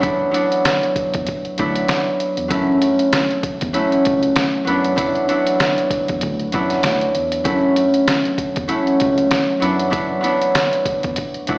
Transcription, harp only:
0.00 0.31 F#3 medium
0.00 2.12 A3 medium
0.00 0.31 B3 medium
0.00 0.31 D4 medium
0.00 0.31 E4 loud
0.31 1.57 F#3 loud
0.31 1.59 B3 medium
0.31 1.59 D4 medium
0.31 1.59 E4 loud
1.58 2.48 F#3 loud
1.58 4.66 B3 medium
1.58 2.58 D4 medium
1.58 2.50 E4 loud
2.48 3.72 F#3 medium
2.48 3.73 A3 medium
2.48 3.73 C#4 medium
2.48 3.74 E4 loud
3.73 4.64 F#3 medium
3.73 7.07 A3 medium
3.73 4.75 C#4 medium
3.73 4.67 E4 loud
4.64 4.95 F#3 loud
4.64 4.95 B3 medium
4.64 4.95 E4 loud
4.69 4.95 D4 medium
4.96 5.27 F#3 medium
4.96 5.26 B3 medium
4.96 5.26 D4 medium
4.96 5.26 E4 loud
5.28 6.52 F#3 loud
5.28 6.53 B3 medium
5.28 6.53 D4 medium
5.28 6.54 E4 loud
6.53 7.43 F#3 loud
6.53 9.61 B3 medium
6.53 7.51 D4 medium
6.53 7.45 E4 loud
7.44 8.67 F#3 medium
7.44 8.68 A3 medium
7.44 8.68 C#4 medium
7.44 8.68 E4 loud
8.68 9.59 F#3 medium
8.68 11.58 A3 medium
8.68 9.69 C#4 medium
8.68 9.61 E4 loud
9.60 9.89 F#3 loud
9.60 9.89 B3 medium
9.60 9.90 D4 medium
9.60 9.90 E4 loud
9.90 10.20 F#3 medium
9.90 10.20 B3 medium
9.90 10.21 D4 loud
9.90 10.21 E4 loud
10.21 11.47 F#3 loud
10.21 11.48 B3 medium
10.21 11.49 E4 loud
10.25 11.48 D4 medium
11.48 11.58 F#3 loud
11.48 11.58 B3 medium
11.48 11.58 D4 medium
11.48 11.58 E4 loud

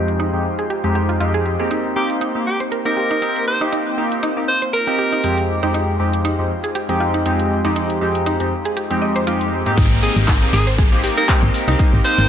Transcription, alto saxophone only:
1.96 2.09 G4 medium
2.47 2.59 G4 medium
2.86 3.45 A#4 medium
3.48 3.60 C5 medium
4.48 4.61 C5 medium
4.73 5.45 A#4 medium
10.03 10.15 G#4 loud
10.53 10.66 G#4 medium
11.18 11.28 A#4 medium
12.05 12.29 C5 loud

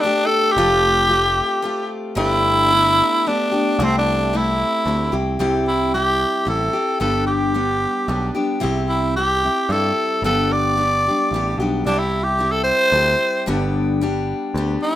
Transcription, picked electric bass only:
0.57 1.41 F1 medium
2.16 3.01 G1 loud
3.79 4.63 C2 loud
4.86 5.10 D2 medium
5.13 5.37 C2 medium
5.40 6.24 C2 medium
6.47 6.68 A1 medium
7.01 7.85 G1 medium
8.08 8.29 B1 loud
8.64 9.48 C2 medium
9.69 9.91 G2 medium
10.22 11.08 G1 medium
11.31 11.56 A1 medium
11.58 11.83 B1 medium
11.86 12.71 C2 medium
12.92 13.14 D2 medium
13.48 14.33 G1 medium
14.54 14.76 D2 medium

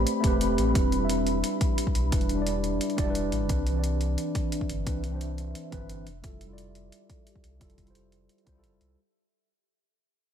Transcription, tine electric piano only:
0.00 0.20 A3 medium
0.00 0.23 C4 medium
0.00 0.25 G4 medium
0.00 0.27 B4 medium
0.00 0.24 C5 medium
0.00 0.77 D5 medium
0.20 0.72 A3 medium
0.20 0.73 C4 medium
0.25 0.74 G4 medium
0.25 0.75 B4 loud
0.74 0.97 G3 medium
0.74 0.99 D4 medium
0.74 0.99 E4 medium
0.74 1.00 B4 medium
0.98 2.09 G3 medium
0.98 2.10 D4 medium
1.02 2.11 E4 medium
1.02 2.12 E5 medium
2.11 2.34 G3 medium
2.11 2.36 D4 medium
2.11 2.37 E4 medium
2.11 2.37 B4 medium
2.35 2.95 G3 medium
2.35 2.96 D4 medium
2.40 2.97 E4 medium
2.40 2.98 D5 medium
2.96 3.02 G3 medium
2.96 3.05 D4 medium
2.96 3.05 E4 medium
2.96 3.06 D5 medium
3.04 3.46 G3 medium
3.04 3.47 D4 medium
3.08 3.48 E4 medium
3.08 3.49 B4 medium
3.48 3.71 E3 medium
3.48 3.73 C4 medium
3.48 3.74 D4 medium
3.48 3.74 B4 medium
3.72 4.83 E3 medium
3.72 4.84 C4 medium
3.77 4.85 D4 medium
3.77 4.86 D5 medium
4.85 5.08 E3 medium
4.85 5.10 C4 medium
4.85 5.11 D4 medium
4.85 5.11 B4 medium
5.09 5.69 E3 medium
5.09 5.70 C4 medium
5.14 5.71 D4 medium
5.14 5.72 C5 medium
5.71 6.05 E3 medium
5.71 6.05 C4 medium
5.71 6.06 D4 medium
5.71 6.06 B4 loud
6.22 6.45 G3 medium
6.22 6.47 E4 medium
6.22 6.48 F4 medium
6.22 6.49 A4 medium
6.47 7.57 G3 medium
6.47 7.58 E4 medium
6.51 7.60 F4 medium
6.51 7.61 D5 medium
7.59 7.82 G3 medium
7.59 7.84 E4 medium
7.59 7.85 F4 medium
7.59 7.86 A4 medium
7.84 8.43 G3 medium
7.84 8.44 E4 medium
7.88 8.46 F4 medium
7.88 8.47 C5 medium
8.45 8.51 G3 medium
8.45 8.53 E4 medium
8.45 8.54 F4 medium
8.45 8.54 C5 medium
8.52 8.94 G3 medium
8.52 8.96 E4 medium
8.57 8.97 F4 medium
8.57 8.98 A4 medium

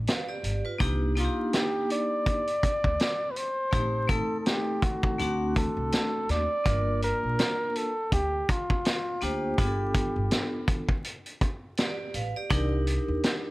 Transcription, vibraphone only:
0.08 0.28 B4 medium
0.08 0.27 F5 medium
0.29 0.63 G4 medium
0.29 0.63 D5 medium
0.65 1.00 F4 medium
0.65 0.99 B4 medium
0.78 1.10 A#3 medium
0.78 1.11 D4 medium
0.78 1.11 D#4 medium
0.78 1.12 G4 medium
1.15 2.37 A#3 medium
1.15 2.38 D4 medium
1.15 2.38 D#4 medium
1.15 1.25 F4 medium
1.25 2.42 G4 medium
3.71 4.03 A3 medium
3.71 4.03 C4 medium
3.71 4.04 D#4 medium
3.71 4.04 G4 medium
4.08 5.17 A3 medium
4.08 5.18 C4 medium
4.08 5.19 D#4 medium
4.08 5.20 A4 medium
5.18 6.40 A3 medium
5.18 6.40 C4 medium
5.18 6.41 D4 medium
5.18 6.42 F#4 medium
6.64 7.86 A#3 medium
6.64 7.87 D4 medium
6.64 7.87 F4 medium
6.64 7.87 A#4 medium
9.21 9.52 A#3 medium
9.21 9.53 D4 medium
9.21 9.53 F4 medium
9.21 9.54 C5 medium
9.58 10.79 B3 medium
9.58 10.80 D4 medium
9.58 10.80 F4 medium
9.58 9.67 G#4 medium
9.67 10.84 A4 medium
11.78 12.13 G4 medium
11.78 12.13 D5 medium
12.15 12.35 B4 soft
12.15 12.35 F5 medium
12.36 12.50 G4 medium
12.36 12.71 D5 medium
12.50 13.51 D4 medium
12.50 13.51 D#4 medium
12.50 13.51 G4 medium
12.50 13.51 A#4 medium

